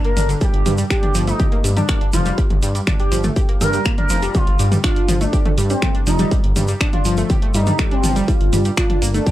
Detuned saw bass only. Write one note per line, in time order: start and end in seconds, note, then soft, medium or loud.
0.17 0.35 G1 medium
0.54 0.63 G1 loud
0.66 0.84 G2 loud
1.15 1.33 G1 medium
1.64 1.82 G2 medium
2.13 2.31 F1 medium
2.50 2.59 G1 loud
2.63 2.80 G2 loud
3.12 3.30 G1 medium
3.61 3.79 G2 medium
4.10 4.28 F1 medium
4.47 4.56 G1 loud
4.59 4.77 G2 loud
5.09 5.26 G1 medium
5.58 5.76 G2 medium
6.07 6.25 F1 medium
6.44 6.53 G1 loud
6.56 6.74 G2 loud
7.05 7.23 G1 medium
7.54 7.72 G2 loud
8.04 8.21 G1 loud
8.41 8.49 G1 medium
8.53 8.71 G2 loud
9.02 9.20 G1 medium